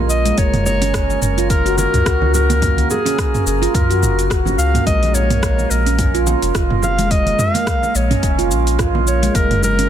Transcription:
Already playing: A#1 A#3 A#4
0.09 D#5, cabasa
0.25 G#3, open hi-hat, muted conga, cabasa
0.38 F#1 A#3 C#5, kick, open hi-hat, cabasa
0.54 mid tom, open hi-hat, high conga
0.66 C#5, low conga, cabasa
0.82 C#4, open hi-hat, muted conga, cabasa
0.94 kick, cross-stick, open hi-hat, cabasa
1.10 muted conga, cabasa
1.22 F#1 C#5, mid tom, cabasa
1.38 F4, open hi-hat, cabasa
1.50 A#4, kick, open hi-hat, cabasa
1.66 F#4, open hi-hat, cabasa
1.78 A#4, muted conga, high conga, cabasa
1.94 C#2, mid tom, open hi-hat, cabasa
2.06 C#2 F#4, kick, cross-stick, open hi-hat, cabasa
2.22 C#4, high conga
2.34 A#4, low conga, cabasa
2.50 A#3, open hi-hat, muted conga, high conga, cabasa
2.62 A#3, kick, mid tom, open hi-hat, cabasa
2.77 open hi-hat, high conga
2.90 G#4, low conga, cabasa
3.06 C#4, open hi-hat, muted conga, cabasa
3.18 kick, cross-stick, open hi-hat, cabasa
3.34 mid tom, muted conga, cabasa
3.46 F#1 G#4, cabasa
3.62 F4, open hi-hat, cabasa
3.74 F#2 A#4, kick, open hi-hat, cabasa
3.90 F#4, open hi-hat, high conga, cabasa
4.02 F#1, mid tom, cabasa
4.19 open hi-hat, cabasa
4.30 F#4, kick, cross-stick, open hi-hat, cabasa
4.45 C#4, high conga, low conga, cabasa
4.58 C#2 F5, cabasa
4.74 A#3, mid tom, open hi-hat, muted conga, cabasa
4.86 A#1 G#3 D#5, kick, open hi-hat, cabasa
5.03 open hi-hat, high conga
5.14 C#5, low conga, cabasa
5.30 A#3, mid tom, open hi-hat, muted conga, cabasa
5.43 kick, cross-stick, open hi-hat, cabasa
5.59 muted conga, cabasa
5.70 A#1 A#4, cabasa
5.86 C#4, open hi-hat, cabasa
5.99 kick, mid tom, open hi-hat, cabasa
6.14 F4, open hi-hat, cabasa
6.27 muted conga, high conga, cabasa
6.42 F1, open hi-hat, cabasa
6.55 F1 F4, kick, cross-stick, open hi-hat, cabasa
6.70 A#3, mid tom, high conga
6.82 F5, low conga, cabasa
6.98 G#3, open hi-hat, muted conga, high conga, cabasa
7.11 G#3 D#5, kick, open hi-hat, cabasa
7.25 open hi-hat, high conga
7.39 F5, mid tom, low conga, cabasa
7.54 A#3, open hi-hat, muted conga, cabasa
7.67 kick, cross-stick, open hi-hat, cabasa
7.83 muted conga, cabasa
7.95 A#1 C#5, cabasa
8.11 C#4, mid tom, open hi-hat, cabasa
8.23 F1, kick, open hi-hat, cabasa
8.39 F4, open hi-hat, high conga, cabasa
8.51 A#1, cabasa
8.67 open hi-hat, cabasa
8.79 F4, kick, cross-stick, mid tom, open hi-hat, cabasa
8.95 A#3, high conga, low conga
9.07 C#5, cabasa
9.22 G#3, open hi-hat, muted conga, cabasa
9.35 F#1 A#3 A#4, kick, open hi-hat, cabasa
9.51 mid tom, open hi-hat, high conga
9.62 A#4, low conga, cabasa
9.79 C#4, open hi-hat, muted conga, cabasa

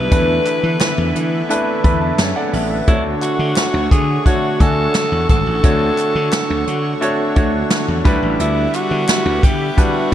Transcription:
Already playing: D3 G3 D4 E4 A#4 B4
0.11 E2 E3 A3 B3 D4 E4 B4, kick, closed hi-hat
0.46 clap, closed hi-hat
0.63 E3
0.80 snare, clap, closed hi-hat
0.98 E2
1.15 E3, closed hi-hat
1.49 A3 D4 E4 B4, closed hi-hat
1.84 E2 A3 D4 E4 B4 B5, kick, closed hi-hat
2.01 A5
2.19 F#2 G#4 C#5 A5, snare, clap, closed hi-hat
2.36 A4 D5 F#5
2.53 A1 E5, open hi-hat
2.71 B4 E5
2.88 D2 D3 A3 D4 E4 F#4 C#5, kick, closed hi-hat
3.22 F#4, clap, closed hi-hat
3.39 D3
3.56 snare, clap, closed hi-hat
3.74 D2
3.91 D3 G#4, kick, closed hi-hat
4.25 A3 D4 F#4 C#5, kick, closed hi-hat
4.60 D2 A3 D4 F#4 A4 G#5, kick, closed hi-hat
4.95 snare, clap, closed hi-hat
5.12 E2
5.29 G#1 A4, kick, closed hi-hat
5.46 A1
5.63 D2 D3 A3 D4 F#4 C#5, kick, closed hi-hat
5.98 clap, closed hi-hat
6.15 D3
6.33 snare, clap, closed hi-hat
6.50 D2
6.67 D3, closed hi-hat
7.01 A3 D4 F#4 C#5, closed hi-hat
7.36 D2 A3 D4 F#4 C#5, kick, closed hi-hat
7.70 snare, clap, closed hi-hat
7.88 E2
8.05 D2 D3 G3 B3 D4 E4 B4, kick, closed hi-hat
8.22 A1
8.40 D2 E4, closed hi-hat
8.74 F#4, clap, closed hi-hat
8.91 D3
9.08 snare, clap, closed hi-hat
9.26 D2
9.43 D3 G4, kick, closed hi-hat
9.77 G3 D4 E4 F#4 B4, kick, closed hi-hat
10.11 G3

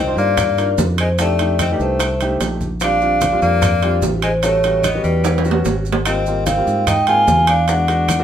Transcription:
Already playing: C2 C4 D#5
0.07 D4 D#4 F4 C5
0.16 G2 A#3 D5, high conga, maracas
0.37 high bongo, high conga, low conga, high timbale, claves, maracas
0.58 D4 D#4 F4 A#4, high bongo, high conga, high timbale, maracas
0.78 F2, high bongo, low bongo, high conga, low timbale, maracas
0.98 G#3 C5, high bongo, high conga, high timbale, claves, maracas
1.19 A3 D4 D#4 G4 D5, high bongo, high conga, high timbale, maracas
1.39 A3 D4 D#4 G4, high conga, high timbale, maracas
1.59 C4 D#5, high bongo, high conga, high timbale, low timbale, claves, maracas
1.71 G3 A3 D4 D#4 G4 B4
1.79 C2 A3 C5, high conga, maracas
2.00 high bongo, high conga, high timbale, claves, maracas
2.20 A3 D4 D#4 G4, high bongo, high conga, high timbale, maracas
2.41 A#1, high bongo, low bongo, high conga, high timbale, low timbale, maracas
2.61 high bongo, high conga, maracas
2.80 G3 C4 D4 F4 F5, high bongo, high conga, high timbale, claves, maracas
3.01 G3 C4 D4 F4, high bongo, high conga, maracas
3.21 high bongo, high conga, high timbale, low timbale, maracas
3.32 G3 C4 D4 F4
3.42 F2 A#3 D5, high conga, maracas
3.62 high bongo, high conga, low conga, high timbale, claves, maracas
3.82 G3 C4 D4 F4, high bongo, high conga, high timbale, maracas
4.02 A1, high bongo, low bongo, high conga, low timbale, maracas
4.22 G#3 C5, high bongo, high conga, high timbale, claves, maracas
4.42 G3 A3 B3 C#4 F#4 C#5, high bongo, high conga, high timbale, maracas
4.64 G3 B3 C#4 F#4, high bongo, high conga, high timbale, maracas
4.83 B3 D#5, high bongo, high conga, high timbale, low timbale, claves, maracas
4.95 G3 B3 C#4 F#4
5.04 E2 G3 B4, high conga, maracas
5.24 high bongo, high timbale, claves, maracas
5.38 high bongo, high timbale
5.45 G3 B3 C#4 F#4, high conga, maracas
5.51 low timbale
5.65 G#1, low bongo, high conga, low timbale, maracas
5.85 maracas
5.92 low bongo, low timbale
6.05 G3 A#3 C4 F4 D#5, high bongo, high conga, high timbale, claves, maracas
6.26 G3 A#3 C4 F4, high bongo, high conga, maracas
6.46 C4 F5, high bongo, high conga, high timbale, low timbale, maracas
6.57 G3 A#3 C4 F4
6.67 G#2, high conga, maracas
6.87 D#4 G5, high bongo, high conga, low conga, high timbale, claves, maracas
7.07 G#3 A#3 C4 F4 G#4 G#5, high bongo, high conga, high timbale, maracas
7.28 E2, high bongo, low bongo, high conga, low timbale, maracas
7.47 D4 F5, high bongo, high conga, high timbale, claves, maracas
7.68 G#3 B3 D4 F#4 F#5, high bongo, high conga, high timbale, maracas
7.88 G#3 B3 D4 F#4, high bongo, high conga, high timbale, maracas
8.08 high bongo, high conga, high timbale, low timbale, claves, maracas
8.19 G#3 B3 D4 F#4

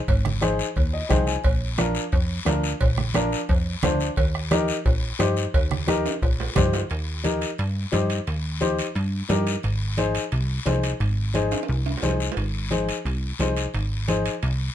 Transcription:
0.08 G#1, bombo low, cowbell, high conga, long guiro
0.25 bombo rim, low conga
0.41 D#4 G#4 C5, bombo rim, cowbell, high conga, short guiro
0.59 short guiro
0.76 D#2, bombo low, cowbell, high conga, long guiro
0.93 D#5
1.09 C2 D#4 G#4 C5 G5, bombo low, bombo rim, cowbell, high conga, low conga, low timbale, short guiro
1.27 G#5, short guiro
1.44 A#1, bombo low, cowbell, high conga, long guiro
1.78 D4 F4 A#4, bombo rim, cowbell, high conga, short guiro
1.95 short guiro
2.12 F2, bombo low, cowbell, high conga, long guiro
2.45 D2 D4 F4 A#4, bombo rim, cowbell, high conga, low timbale, short guiro
2.63 short guiro
2.80 A#1, bombo low, cowbell, high conga, long guiro
2.97 bombo rim, low conga
3.14 D4 F4 A#4, bombo rim, cowbell, high conga, short guiro
3.32 short guiro
3.49 F2, bombo low, cowbell, high conga, long guiro
3.83 D2 D4 F4 C5, bombo rim, cowbell, high conga, low conga, low timbale, short guiro
4.00 short guiro
4.16 D#2, bombo low, cowbell, high conga, long guiro
4.35 bombo rim
4.51 D#4 G4 A#4, bombo rim, cowbell, high conga, short guiro
4.68 short guiro
4.86 A#1, bombo low, cowbell, high conga, long guiro
5.19 G2 D#4 G4 C5, bombo rim, cowbell, high conga, short guiro
5.37 short guiro
5.54 D#2, bombo low, cowbell, high conga, long guiro
5.71 bombo rim, low conga
5.87 D#4 G4 A#4, bombo rim, cowbell, high conga, short guiro
6.06 high timbale, short guiro
6.22 A#1, bombo low, cowbell, high conga, long guiro
6.40 low timbale
6.55 G2 D#4 G4 C5, bombo low, bombo rim, cowbell, high conga, low conga, low timbale, short guiro
6.73 low timbale, short guiro
6.90 D#2, high conga, high timbale, long guiro
7.24 D#4 G4 A#4, high conga, high timbale, short guiro
7.41 high timbale, short guiro
7.58 G2, high conga, high timbale, long guiro
7.92 G2 D#4 G4 C5, high conga, high timbale, short guiro
8.10 high timbale, short guiro
8.27 D#2, high conga, high timbale, long guiro
8.61 D#4 G4 C5, high conga, high timbale, short guiro
8.79 high timbale, short guiro
8.95 G2, high conga, high timbale, long guiro
9.29 G2 D#4 G4 A#4, high conga, high timbale, low timbale, short guiro
9.47 high timbale, short guiro
9.63 G#1, high conga, high timbale, long guiro
9.97 D#4 G#4 C5, high conga, high timbale, short guiro
10.15 high timbale, short guiro
10.32 C2, high conga, high timbale, long guiro
10.65 C2 D#4 G#4 C5, high conga, high timbale, low timbale, short guiro
10.83 high timbale, short guiro
11.00 G#1, high conga, high timbale, long guiro
11.34 D#4 G#4 C5, high conga, high timbale, short guiro
11.51 high timbale, short guiro
11.63 high timbale
11.68 C2, high conga, long guiro
11.86 high timbale
11.97 low timbale
12.02 C2 D#4 G#4 C5, high conga, short guiro
12.09 low timbale
12.20 short guiro
12.32 low timbale
12.37 G#1, high conga, high timbale, long guiro
12.71 D#4 G#4 C5, high conga, high timbale, short guiro
12.89 high timbale, short guiro
13.05 C2, high conga, high timbale, long guiro
13.39 C2 D#4 G#4 C5, high conga, high timbale, low timbale, short guiro
13.57 high timbale, short guiro
13.74 G#1, high conga, high timbale, long guiro
14.08 D#4 G#4 C5, high conga, high timbale, short guiro
14.26 high timbale, short guiro
14.43 C2, high conga, high timbale, long guiro

